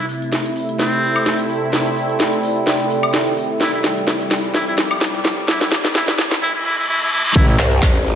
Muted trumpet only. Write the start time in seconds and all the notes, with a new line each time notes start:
0.80 C4
3.61 E4
3.74 E4
4.54 E4
4.68 E4
5.48 E4
5.61 E4
5.95 E4
6.08 E4
6.42 E4
6.55 E4
6.65 E4
6.78 E4
6.89 E4
7.02 E4
7.12 E4
7.25 E4
7.36 E4
7.49 E4